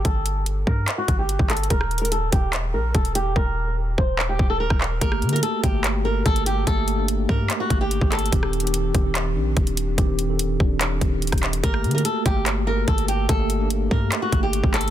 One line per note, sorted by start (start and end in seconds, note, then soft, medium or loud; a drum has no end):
0.05 0.65 G1 loud
0.05 0.44 A4 loud
0.05 kick loud
0.05 closed hi-hat medium
0.26 closed hi-hat medium
0.46 closed hi-hat loud
0.67 0.87 G2 loud
0.67 0.96 A#4 medium
0.67 kick medium
0.88 clap loud
0.88 closed hi-hat medium
0.98 1.17 F#4 medium
1.08 1.38 G1 loud
1.08 kick loud
1.08 closed hi-hat medium
1.19 1.48 G4 medium
1.29 closed hi-hat medium
1.39 1.69 G1 loud
1.39 kick medium
1.50 1.69 A4 medium
1.50 clap loud
1.50 closed hi-hat medium
1.57 closed hi-hat medium
1.63 closed hi-hat soft
1.70 2.30 D#1 loud
1.70 2.00 A#4 loud
1.70 kick loud
1.70 closed hi-hat medium
1.81 cross-stick medium
1.91 closed hi-hat soft
1.98 2.11 A#4 medium
1.98 closed hi-hat medium
2.05 closed hi-hat medium
2.12 2.31 A4 medium
2.12 closed hi-hat medium
2.32 2.75 D#1 loud
2.32 2.52 G4 medium
2.32 kick loud
2.32 closed hi-hat medium
2.53 clap loud
2.53 closed hi-hat medium
2.74 2.94 A#1 loud
2.74 2.93 A#4 medium
2.95 3.34 D#1 loud
2.95 3.14 A4 medium
2.95 kick loud
2.95 closed hi-hat medium
3.05 closed hi-hat medium
3.15 3.34 G4 loud
3.15 closed hi-hat medium
3.36 3.96 D#1 loud
3.36 3.75 A#4 loud
3.36 kick loud
3.98 4.38 D#1 loud
3.98 4.27 C5 medium
3.98 kick loud
4.19 clap loud
4.29 4.48 G4 medium
4.39 4.62 D#1 loud
4.39 kick loud
4.50 4.59 A4 medium
4.60 4.70 D1 loud
4.60 4.99 A#4 medium
4.70 5.00 D#1 loud
4.70 kick medium
4.70 cross-stick medium
4.81 clap medium
5.01 5.24 G1 loud
5.01 5.22 A3 loud
5.01 5.23 A#3 medium
5.01 5.23 G4 loud
5.01 5.31 A#4 medium
5.01 kick loud
5.01 closed hi-hat medium
5.12 cross-stick medium
5.22 5.42 D3 loud
5.22 closed hi-hat soft
5.29 5.53 A3 medium
5.29 5.53 A#3 medium
5.29 5.42 A#4 medium
5.29 closed hi-hat medium
5.33 5.54 F#4 medium
5.33 closed hi-hat medium
5.43 5.62 A4 medium
5.43 closed hi-hat loud
5.63 6.23 G1 loud
5.63 5.91 A3 medium
5.63 5.91 A#3 medium
5.63 5.83 G4 medium
5.63 5.92 G4 medium
5.63 kick loud
5.63 closed hi-hat medium
5.84 clap loud
5.84 closed hi-hat medium
6.04 6.47 A#3 medium
6.04 6.46 A4 medium
6.04 6.24 A#4 medium
6.04 6.47 A#4 medium
6.26 6.65 G1 loud
6.26 6.45 A4 medium
6.26 kick loud
6.26 closed hi-hat medium
6.36 closed hi-hat medium
6.46 6.65 G4 medium
6.46 closed hi-hat medium
6.66 7.27 G1 loud
6.66 6.88 A3 loud
6.66 6.88 A#3 medium
6.66 6.88 G4 loud
6.66 7.06 A4 loud
6.66 kick loud
6.66 closed hi-hat medium
6.88 closed hi-hat medium
6.97 7.18 A3 medium
6.97 7.19 A#3 medium
6.97 7.19 D4 medium
7.08 closed hi-hat medium
7.28 7.49 G2 loud
7.28 7.56 A3 medium
7.28 7.57 A#3 medium
7.28 7.57 G4 medium
7.28 7.58 A#4 medium
7.28 kick loud
7.50 clap loud
7.50 closed hi-hat medium
7.60 7.79 F#4 medium
7.70 8.00 G1 loud
7.70 8.12 A3 medium
7.70 8.12 A#3 medium
7.70 8.13 G4 medium
7.70 kick loud
7.70 closed hi-hat medium
7.81 8.10 G4 medium
7.91 closed hi-hat medium
8.01 8.31 G1 loud
8.01 kick medium
8.12 8.31 A4 medium
8.12 clap medium
8.12 closed hi-hat medium
8.19 closed hi-hat medium
8.26 closed hi-hat soft
8.31 8.92 D#1 loud
8.31 8.53 D#3 medium
8.31 8.53 C4 medium
8.31 8.54 G4 loud
8.31 kick loud
8.31 closed hi-hat medium
8.43 cross-stick medium
8.53 closed hi-hat soft
8.60 8.84 D#3 medium
8.60 8.84 C4 medium
8.60 closed hi-hat medium
8.64 8.85 G4 medium
8.64 closed hi-hat medium
8.74 closed hi-hat medium
8.95 9.37 D#1 loud
8.95 9.23 D#3 medium
8.95 9.23 C4 medium
8.95 9.23 G4 medium
8.95 kick medium
8.95 closed hi-hat medium
9.15 clap loud
9.15 closed hi-hat medium
9.35 9.56 A#1 loud
9.35 9.77 D#3 medium
9.35 9.78 C4 medium
9.35 9.78 D4 medium
9.57 9.96 D#1 loud
9.57 kick loud
9.57 closed hi-hat medium
9.67 closed hi-hat medium
9.77 closed hi-hat medium
9.97 10.58 D#1 loud
9.97 10.19 D#3 loud
9.97 10.19 C4 loud
9.97 10.19 G4 loud
9.97 kick loud
9.97 closed hi-hat medium
10.19 closed hi-hat medium
10.29 10.50 D#3 medium
10.29 10.50 C4 medium
10.29 10.50 A4 medium
10.39 closed hi-hat loud
10.60 11.00 D#1 loud
10.60 10.88 D#3 medium
10.60 10.88 C4 medium
10.60 10.88 D4 medium
10.60 kick loud
10.81 clap loud
10.81 closed hi-hat medium
11.01 11.24 D#1 loud
11.01 11.43 D#3 medium
11.01 11.43 C4 medium
11.01 11.44 G4 medium
11.01 kick loud
11.01 closed hi-hat medium
11.22 11.32 D1 loud
11.22 closed hi-hat soft
11.27 closed hi-hat medium
11.32 11.62 D#1 loud
11.32 kick medium
11.32 cross-stick medium
11.32 closed hi-hat medium
11.38 closed hi-hat medium
11.43 clap loud
11.43 closed hi-hat medium
11.53 closed hi-hat medium
11.64 11.86 G1 loud
11.64 11.84 A3 loud
11.64 11.85 A#3 medium
11.64 11.85 G4 loud
11.64 11.93 A#4 loud
11.64 kick loud
11.64 closed hi-hat medium
11.74 cross-stick medium
11.84 12.04 D3 loud
11.84 closed hi-hat soft
11.91 12.15 A3 medium
11.91 12.15 A#3 medium
11.91 12.04 A#4 medium
11.91 closed hi-hat soft
11.95 12.16 F#4 medium
11.95 closed hi-hat medium
12.05 12.24 A4 medium
12.05 closed hi-hat loud
12.25 12.85 G1 loud
12.25 12.53 A3 medium
12.25 12.53 A#3 medium
12.25 12.45 G4 medium
12.25 12.54 G4 medium
12.25 kick loud
12.25 closed hi-hat medium
12.46 clap loud
12.46 closed hi-hat medium
12.66 13.09 A#3 medium
12.66 13.08 A4 medium
12.66 12.86 A#4 medium
12.66 13.09 A#4 medium
12.88 13.27 G1 loud
12.88 13.07 A4 medium
12.88 kick loud
12.88 closed hi-hat medium
12.98 closed hi-hat medium
13.08 13.27 G4 medium
13.08 closed hi-hat medium
13.29 13.89 G1 loud
13.29 13.50 A3 loud
13.29 13.50 A#3 medium
13.29 13.50 G4 loud
13.29 13.68 A4 medium
13.29 kick loud
13.29 closed hi-hat medium
13.50 closed hi-hat medium
13.59 13.81 A3 medium
13.59 13.81 A#3 medium
13.59 13.81 D4 medium
13.70 closed hi-hat loud
13.90 14.11 G2 loud
13.90 14.18 A3 medium
13.90 14.19 A#3 medium
13.90 14.19 G4 medium
13.90 14.20 A#4 medium
13.90 kick loud
14.12 clap loud
14.12 closed hi-hat loud
14.22 14.41 F#4 medium
14.32 14.62 G1 loud
14.32 14.74 A3 medium
14.32 14.74 A#3 medium
14.32 14.75 G4 medium
14.32 kick loud
14.32 closed hi-hat medium
14.43 14.72 G4 medium
14.53 closed hi-hat medium
14.64 14.90 G1 loud
14.64 kick loud
14.74 14.90 A4 medium
14.74 clap loud
14.74 closed hi-hat medium
14.81 closed hi-hat medium